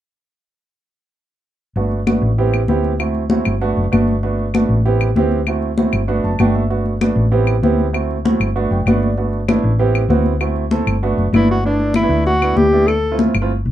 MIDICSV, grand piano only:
0, 0, Header, 1, 2, 480
1, 0, Start_track
1, 0, Key_signature, 1, "major"
1, 0, Tempo, 308801
1, 2745, Time_signature, 4, 2, 24, 8
1, 21320, End_track
2, 0, Start_track
2, 0, Title_t, "Grand piano"
2, 0, Program_c, 0, 0
2, 2746, Note_on_c, 0, 57, 67
2, 2746, Note_on_c, 0, 62, 58
2, 2748, Note_on_c, 0, 59, 63
2, 2748, Note_on_c, 0, 66, 71
2, 3082, Note_off_c, 0, 57, 0
2, 3082, Note_off_c, 0, 62, 0
2, 3083, Note_off_c, 0, 59, 0
2, 3083, Note_off_c, 0, 66, 0
2, 3212, Note_on_c, 0, 59, 62
2, 3213, Note_on_c, 0, 57, 67
2, 3218, Note_on_c, 0, 62, 61
2, 3221, Note_on_c, 0, 66, 72
2, 3555, Note_off_c, 0, 57, 0
2, 3555, Note_off_c, 0, 59, 0
2, 3558, Note_off_c, 0, 62, 0
2, 3560, Note_off_c, 0, 66, 0
2, 3703, Note_on_c, 0, 60, 79
2, 3704, Note_on_c, 0, 64, 75
2, 3705, Note_on_c, 0, 59, 79
2, 3706, Note_on_c, 0, 67, 89
2, 4040, Note_off_c, 0, 60, 0
2, 4041, Note_off_c, 0, 64, 0
2, 4042, Note_off_c, 0, 59, 0
2, 4042, Note_off_c, 0, 67, 0
2, 4179, Note_on_c, 0, 60, 72
2, 4181, Note_on_c, 0, 64, 72
2, 4181, Note_on_c, 0, 67, 89
2, 4183, Note_on_c, 0, 59, 75
2, 4518, Note_off_c, 0, 60, 0
2, 4520, Note_off_c, 0, 59, 0
2, 4520, Note_off_c, 0, 64, 0
2, 4520, Note_off_c, 0, 67, 0
2, 4655, Note_on_c, 0, 60, 62
2, 4657, Note_on_c, 0, 57, 67
2, 4657, Note_on_c, 0, 64, 62
2, 4658, Note_on_c, 0, 66, 68
2, 4997, Note_off_c, 0, 57, 0
2, 4997, Note_off_c, 0, 60, 0
2, 4997, Note_off_c, 0, 64, 0
2, 4998, Note_off_c, 0, 66, 0
2, 5140, Note_on_c, 0, 57, 68
2, 5142, Note_on_c, 0, 60, 67
2, 5144, Note_on_c, 0, 64, 61
2, 5145, Note_on_c, 0, 66, 79
2, 5479, Note_off_c, 0, 57, 0
2, 5480, Note_off_c, 0, 60, 0
2, 5481, Note_off_c, 0, 64, 0
2, 5481, Note_off_c, 0, 66, 0
2, 5617, Note_on_c, 0, 57, 82
2, 5617, Note_on_c, 0, 59, 72
2, 5618, Note_on_c, 0, 62, 71
2, 5618, Note_on_c, 0, 66, 93
2, 5958, Note_off_c, 0, 57, 0
2, 5958, Note_off_c, 0, 59, 0
2, 5958, Note_off_c, 0, 62, 0
2, 5958, Note_off_c, 0, 66, 0
2, 6089, Note_on_c, 0, 62, 69
2, 6091, Note_on_c, 0, 59, 69
2, 6093, Note_on_c, 0, 57, 78
2, 6093, Note_on_c, 0, 66, 88
2, 6434, Note_off_c, 0, 62, 0
2, 6435, Note_off_c, 0, 59, 0
2, 6436, Note_off_c, 0, 57, 0
2, 6436, Note_off_c, 0, 66, 0
2, 6576, Note_on_c, 0, 59, 59
2, 6577, Note_on_c, 0, 57, 75
2, 6577, Note_on_c, 0, 66, 72
2, 6578, Note_on_c, 0, 62, 63
2, 6917, Note_off_c, 0, 57, 0
2, 6917, Note_off_c, 0, 59, 0
2, 6918, Note_off_c, 0, 62, 0
2, 6918, Note_off_c, 0, 66, 0
2, 7059, Note_on_c, 0, 66, 83
2, 7060, Note_on_c, 0, 59, 63
2, 7061, Note_on_c, 0, 62, 64
2, 7064, Note_on_c, 0, 57, 64
2, 7399, Note_off_c, 0, 59, 0
2, 7399, Note_off_c, 0, 66, 0
2, 7400, Note_off_c, 0, 62, 0
2, 7401, Note_off_c, 0, 57, 0
2, 7545, Note_on_c, 0, 59, 80
2, 7546, Note_on_c, 0, 67, 94
2, 7547, Note_on_c, 0, 64, 69
2, 7549, Note_on_c, 0, 60, 69
2, 7882, Note_off_c, 0, 59, 0
2, 7882, Note_off_c, 0, 67, 0
2, 7883, Note_off_c, 0, 64, 0
2, 7884, Note_off_c, 0, 60, 0
2, 8029, Note_on_c, 0, 59, 79
2, 8029, Note_on_c, 0, 64, 75
2, 8031, Note_on_c, 0, 60, 81
2, 8036, Note_on_c, 0, 67, 94
2, 8364, Note_off_c, 0, 59, 0
2, 8364, Note_off_c, 0, 64, 0
2, 8365, Note_off_c, 0, 60, 0
2, 8367, Note_off_c, 0, 67, 0
2, 8505, Note_on_c, 0, 57, 68
2, 8506, Note_on_c, 0, 64, 60
2, 8511, Note_on_c, 0, 60, 63
2, 8515, Note_on_c, 0, 66, 78
2, 8842, Note_off_c, 0, 57, 0
2, 8842, Note_off_c, 0, 64, 0
2, 8845, Note_off_c, 0, 60, 0
2, 8847, Note_off_c, 0, 66, 0
2, 8981, Note_on_c, 0, 57, 65
2, 8985, Note_on_c, 0, 60, 70
2, 8989, Note_on_c, 0, 64, 61
2, 8991, Note_on_c, 0, 66, 77
2, 9320, Note_off_c, 0, 57, 0
2, 9322, Note_off_c, 0, 60, 0
2, 9324, Note_off_c, 0, 64, 0
2, 9325, Note_off_c, 0, 66, 0
2, 9448, Note_on_c, 0, 62, 73
2, 9450, Note_on_c, 0, 57, 78
2, 9452, Note_on_c, 0, 59, 74
2, 9454, Note_on_c, 0, 66, 93
2, 9702, Note_on_c, 0, 81, 58
2, 9793, Note_off_c, 0, 62, 0
2, 9795, Note_off_c, 0, 57, 0
2, 9796, Note_off_c, 0, 59, 0
2, 9796, Note_off_c, 0, 66, 0
2, 9927, Note_off_c, 0, 81, 0
2, 9945, Note_on_c, 0, 57, 79
2, 9946, Note_on_c, 0, 59, 65
2, 9946, Note_on_c, 0, 79, 63
2, 9947, Note_on_c, 0, 62, 75
2, 9948, Note_on_c, 0, 66, 90
2, 10170, Note_off_c, 0, 79, 0
2, 10183, Note_on_c, 0, 76, 61
2, 10282, Note_off_c, 0, 57, 0
2, 10282, Note_off_c, 0, 59, 0
2, 10283, Note_off_c, 0, 62, 0
2, 10283, Note_off_c, 0, 66, 0
2, 10408, Note_off_c, 0, 76, 0
2, 10417, Note_on_c, 0, 57, 60
2, 10417, Note_on_c, 0, 62, 55
2, 10419, Note_on_c, 0, 59, 55
2, 10419, Note_on_c, 0, 66, 81
2, 10758, Note_off_c, 0, 57, 0
2, 10758, Note_off_c, 0, 62, 0
2, 10759, Note_off_c, 0, 59, 0
2, 10759, Note_off_c, 0, 66, 0
2, 10899, Note_on_c, 0, 57, 63
2, 10900, Note_on_c, 0, 62, 68
2, 10901, Note_on_c, 0, 66, 76
2, 10904, Note_on_c, 0, 59, 67
2, 11238, Note_off_c, 0, 57, 0
2, 11239, Note_off_c, 0, 62, 0
2, 11240, Note_off_c, 0, 66, 0
2, 11241, Note_off_c, 0, 59, 0
2, 11372, Note_on_c, 0, 59, 88
2, 11373, Note_on_c, 0, 60, 74
2, 11375, Note_on_c, 0, 64, 72
2, 11375, Note_on_c, 0, 67, 91
2, 11715, Note_off_c, 0, 59, 0
2, 11716, Note_off_c, 0, 60, 0
2, 11717, Note_off_c, 0, 64, 0
2, 11717, Note_off_c, 0, 67, 0
2, 11860, Note_on_c, 0, 59, 86
2, 11862, Note_on_c, 0, 67, 81
2, 11863, Note_on_c, 0, 60, 74
2, 11865, Note_on_c, 0, 64, 79
2, 12199, Note_off_c, 0, 59, 0
2, 12200, Note_off_c, 0, 67, 0
2, 12201, Note_off_c, 0, 60, 0
2, 12202, Note_off_c, 0, 64, 0
2, 12329, Note_on_c, 0, 60, 66
2, 12330, Note_on_c, 0, 57, 68
2, 12333, Note_on_c, 0, 64, 56
2, 12334, Note_on_c, 0, 66, 71
2, 12674, Note_off_c, 0, 60, 0
2, 12675, Note_off_c, 0, 57, 0
2, 12676, Note_off_c, 0, 64, 0
2, 12676, Note_off_c, 0, 66, 0
2, 12820, Note_on_c, 0, 57, 75
2, 12824, Note_on_c, 0, 64, 64
2, 12825, Note_on_c, 0, 60, 68
2, 12829, Note_on_c, 0, 66, 73
2, 13159, Note_off_c, 0, 57, 0
2, 13161, Note_off_c, 0, 64, 0
2, 13162, Note_off_c, 0, 60, 0
2, 13164, Note_off_c, 0, 66, 0
2, 13299, Note_on_c, 0, 59, 74
2, 13300, Note_on_c, 0, 62, 75
2, 13302, Note_on_c, 0, 57, 81
2, 13303, Note_on_c, 0, 66, 91
2, 13541, Note_on_c, 0, 79, 62
2, 13639, Note_off_c, 0, 59, 0
2, 13639, Note_off_c, 0, 62, 0
2, 13640, Note_off_c, 0, 57, 0
2, 13641, Note_off_c, 0, 66, 0
2, 13767, Note_off_c, 0, 79, 0
2, 13789, Note_on_c, 0, 57, 80
2, 13791, Note_on_c, 0, 59, 72
2, 13792, Note_on_c, 0, 62, 78
2, 13794, Note_on_c, 0, 78, 68
2, 13795, Note_on_c, 0, 66, 91
2, 14014, Note_off_c, 0, 78, 0
2, 14028, Note_on_c, 0, 74, 60
2, 14124, Note_off_c, 0, 57, 0
2, 14125, Note_off_c, 0, 59, 0
2, 14125, Note_off_c, 0, 62, 0
2, 14127, Note_off_c, 0, 66, 0
2, 14251, Note_off_c, 0, 74, 0
2, 14264, Note_on_c, 0, 62, 63
2, 14265, Note_on_c, 0, 57, 66
2, 14265, Note_on_c, 0, 59, 60
2, 14268, Note_on_c, 0, 66, 74
2, 14602, Note_off_c, 0, 57, 0
2, 14602, Note_off_c, 0, 59, 0
2, 14602, Note_off_c, 0, 62, 0
2, 14603, Note_off_c, 0, 66, 0
2, 14746, Note_on_c, 0, 59, 66
2, 14748, Note_on_c, 0, 57, 78
2, 14748, Note_on_c, 0, 62, 68
2, 14752, Note_on_c, 0, 64, 87
2, 15082, Note_off_c, 0, 59, 0
2, 15083, Note_off_c, 0, 57, 0
2, 15083, Note_off_c, 0, 62, 0
2, 15085, Note_off_c, 0, 64, 0
2, 15224, Note_on_c, 0, 59, 86
2, 15224, Note_on_c, 0, 64, 74
2, 15224, Note_on_c, 0, 67, 95
2, 15227, Note_on_c, 0, 60, 75
2, 15561, Note_off_c, 0, 59, 0
2, 15561, Note_off_c, 0, 64, 0
2, 15561, Note_off_c, 0, 67, 0
2, 15563, Note_off_c, 0, 60, 0
2, 15693, Note_on_c, 0, 64, 73
2, 15694, Note_on_c, 0, 59, 81
2, 15696, Note_on_c, 0, 60, 79
2, 15701, Note_on_c, 0, 66, 88
2, 16036, Note_off_c, 0, 59, 0
2, 16036, Note_off_c, 0, 64, 0
2, 16038, Note_off_c, 0, 60, 0
2, 16040, Note_off_c, 0, 66, 0
2, 16176, Note_on_c, 0, 57, 73
2, 16178, Note_on_c, 0, 66, 75
2, 16181, Note_on_c, 0, 60, 65
2, 16181, Note_on_c, 0, 64, 64
2, 16517, Note_off_c, 0, 57, 0
2, 16518, Note_off_c, 0, 66, 0
2, 16520, Note_off_c, 0, 60, 0
2, 16520, Note_off_c, 0, 64, 0
2, 16658, Note_on_c, 0, 60, 70
2, 16659, Note_on_c, 0, 57, 70
2, 16660, Note_on_c, 0, 69, 82
2, 16663, Note_on_c, 0, 64, 64
2, 16998, Note_off_c, 0, 60, 0
2, 16999, Note_off_c, 0, 57, 0
2, 16999, Note_off_c, 0, 69, 0
2, 17000, Note_off_c, 0, 64, 0
2, 17141, Note_on_c, 0, 59, 78
2, 17143, Note_on_c, 0, 57, 83
2, 17144, Note_on_c, 0, 62, 73
2, 17144, Note_on_c, 0, 66, 89
2, 17480, Note_off_c, 0, 59, 0
2, 17481, Note_off_c, 0, 57, 0
2, 17481, Note_off_c, 0, 62, 0
2, 17481, Note_off_c, 0, 66, 0
2, 17625, Note_on_c, 0, 57, 73
2, 17626, Note_on_c, 0, 62, 76
2, 17626, Note_on_c, 0, 64, 82
2, 17627, Note_on_c, 0, 59, 76
2, 17961, Note_off_c, 0, 57, 0
2, 17962, Note_off_c, 0, 59, 0
2, 17962, Note_off_c, 0, 62, 0
2, 17962, Note_off_c, 0, 64, 0
2, 18113, Note_on_c, 0, 57, 66
2, 18114, Note_on_c, 0, 59, 56
2, 18114, Note_on_c, 0, 62, 67
2, 18115, Note_on_c, 0, 64, 77
2, 18529, Note_off_c, 0, 57, 0
2, 18530, Note_off_c, 0, 59, 0
2, 18530, Note_off_c, 0, 62, 0
2, 18530, Note_off_c, 0, 64, 0
2, 18694, Note_on_c, 0, 57, 76
2, 18696, Note_on_c, 0, 62, 66
2, 18697, Note_on_c, 0, 59, 72
2, 18702, Note_on_c, 0, 64, 90
2, 19120, Note_off_c, 0, 57, 0
2, 19121, Note_off_c, 0, 59, 0
2, 19121, Note_off_c, 0, 62, 0
2, 19124, Note_off_c, 0, 64, 0
2, 19306, Note_on_c, 0, 57, 70
2, 19307, Note_on_c, 0, 59, 65
2, 19308, Note_on_c, 0, 62, 65
2, 19309, Note_on_c, 0, 64, 84
2, 19642, Note_off_c, 0, 57, 0
2, 19642, Note_off_c, 0, 59, 0
2, 19643, Note_off_c, 0, 62, 0
2, 19643, Note_off_c, 0, 64, 0
2, 19781, Note_on_c, 0, 57, 75
2, 19782, Note_on_c, 0, 62, 70
2, 19786, Note_on_c, 0, 64, 80
2, 19788, Note_on_c, 0, 59, 72
2, 20023, Note_off_c, 0, 57, 0
2, 20024, Note_off_c, 0, 62, 0
2, 20026, Note_off_c, 0, 59, 0
2, 20026, Note_off_c, 0, 64, 0
2, 20384, Note_on_c, 0, 57, 75
2, 20387, Note_on_c, 0, 64, 69
2, 20388, Note_on_c, 0, 65, 83
2, 20390, Note_on_c, 0, 60, 66
2, 20720, Note_off_c, 0, 57, 0
2, 20722, Note_off_c, 0, 64, 0
2, 20722, Note_off_c, 0, 65, 0
2, 20723, Note_off_c, 0, 60, 0
2, 20854, Note_on_c, 0, 57, 76
2, 20855, Note_on_c, 0, 60, 70
2, 20856, Note_on_c, 0, 64, 68
2, 20859, Note_on_c, 0, 65, 95
2, 20979, Note_off_c, 0, 57, 0
2, 20980, Note_off_c, 0, 60, 0
2, 20980, Note_off_c, 0, 64, 0
2, 20982, Note_off_c, 0, 65, 0
2, 21320, End_track
0, 0, End_of_file